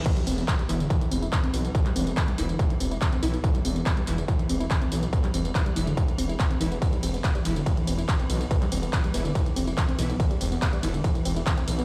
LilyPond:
<<
  \new Staff \with { instrumentName = "Synth stab" } { \time 4/4 \key e \minor \tempo 4 = 142 r4. <e b e'>8 r2 | r4. <e b e'>8 r4. <e b e'>8 | r4. <e b e'>8 r2 | r4. <e b e'>8 r4. <e b e'>8 |
r4. <e b e'>8 r2 | r4. <e b e'>8 r4. <e b e'>8 | r4. <e b e'>8 r2 | }
  \new Staff \with { instrumentName = "Synth arpeggio sound" } { \clef bass \time 4/4 \key e \minor e16 g16 c'16 b16 e'16 g16 e16 d16 e16 e16 c'16 e'16 e16 c'16 e16 b16 | e16 g16 c'16 b16 e'16 g16 e16 d16 e16 e16 c'16 e'16 e16 c'16 e16 b16 | e16 g16 c'16 b16 e'16 g16 e16 d16 e16 e16 c'16 e'16 e16 c'16 e16 b16 | e16 g16 c'16 b16 e'16 g16 e16 d16 e16 e16 c'16 e'16 e16 c'16 e16 b16 |
e16 g16 c'16 b16 e'16 g16 e16 d16 e16 e16 c'16 e'16 e16 c'16 e16 b16 | e16 g16 c'16 b16 e'16 g16 e16 d16 e16 e16 c'16 e'16 e16 c'16 e16 b16 | e16 g16 c'16 b16 e'16 g16 e16 d16 e16 e16 c'16 e'16 e16 c'16 e16 b16 | }
  \new Staff \with { instrumentName = "Synth drone" } { \clef bass \time 4/4 \key e \minor e1~ | e1~ | e1~ | e1~ |
e1~ | e1~ | e1 | }
  \new Staff \with { instrumentName = "Detuned saw bass" } { \clef bass \time 4/4 \key e \minor r8 e,,8 r8 e,,8 r8 e,,8 r8 b,,8 | r8 e,,8 r8 e,,8 r8 e,,8 r8 b,,8 | r8 e,,8 r8 e,,8 r8 e,,8 r8 b,,8 | r8 e,,8 r8 e,,8 r8 e,,8 r8 e,,8 |
r8 e,,8 r8 e,,8 r8 e,,8 r8 b,,8 | r8 e,,8 r8 e,,8 r8 e,,8 r8 b,,8 | r8 e,,8 r8 e,,8 r8 e,,8 r8 b,,8 | }
  \new DrumStaff \with { instrumentName = "Drums" } \drummode { \time 4/4 <cymc hh bd tamb>16 <hh tamb>16 <hho tamb>16 <hh tamb>16 <hc hh bd tamb>16 <hh tamb>16 <hc hho tamb>16 <hh tamb>16 <hh bd tamb>16 <hh tamb>16 <hho tamb>16 <hh tamb>16 <hc hh bd tamb>16 <hh tamb>16 <hho tamb>16 <hh tamb>16 | <hh bd tamb>16 <hc hh tamb>16 <hho tamb>16 <hh tamb>16 <hc hh bd tamb>16 <hh tamb>16 <hho tamb>16 <hh tamb>16 <hh bd tamb>16 <hh tamb>16 <hho tamb>16 <hh tamb>16 <hc hh bd tamb>16 <hh tamb>16 <hho tamb>16 <hh tamb>16 | <hh bd tamb>16 <hh tamb>16 <hho tamb>16 <hh tamb>16 <hc hh bd tamb>16 <hh tamb>16 <hc hho tamb>16 <hh tamb>16 <hh bd tamb>16 <hh tamb>16 <hho tamb>16 <hh tamb>16 <hc hh bd tamb>16 <hh tamb>16 <hho tamb>16 <hh tamb>16 | <hh bd tamb>16 <hc hh tamb>16 <hho tamb>16 <hh tamb>16 <hc hh bd tamb>16 <hh tamb>16 <hho tamb>16 <hh tamb>16 <hh bd tamb>16 <hh tamb>16 <hho tamb>16 <hh tamb>16 <hc hh bd tamb>16 <hh tamb>16 <hho tamb>16 <hh tamb>16 |
<hh bd cymr tamb>16 <hh tamb>16 <hho cymr tamb>16 <hh tamb>16 <hc hh bd cymr tamb>16 <hh tamb>16 <hc hho cymr tamb>16 <hh tamb>16 <hh bd cymr tamb>16 <hh tamb>16 <hho cymr tamb>16 <hh tamb>16 <hc hh bd cymr tamb>16 <hh tamb>16 <hho cymr tamb>16 <hh tamb>16 | <hh bd cymr tamb>16 <hc hh tamb>16 <hho cymr tamb>16 <hh tamb>16 <hc hh bd cymr tamb>16 <hh tamb>16 <hho cymr tamb>16 <hh tamb>16 <hh bd cymr tamb>16 <hh tamb>16 <hho cymr tamb>16 <hh tamb>16 <hc hh bd cymr tamb>16 <hh tamb>16 <hho cymr tamb>16 <hh tamb>16 | <hh bd cymr tamb>16 <hh tamb>16 <hho cymr tamb>16 <hh tamb>16 <hc hh bd cymr tamb>16 <hh tamb>16 <hc hho cymr tamb>16 <hh tamb>16 <hh bd cymr tamb>16 <hh tamb>16 <hho cymr tamb>16 <hh tamb>16 <hc hh bd cymr tamb>16 <hh tamb>16 <hho cymr tamb>16 <hh tamb>16 | }
>>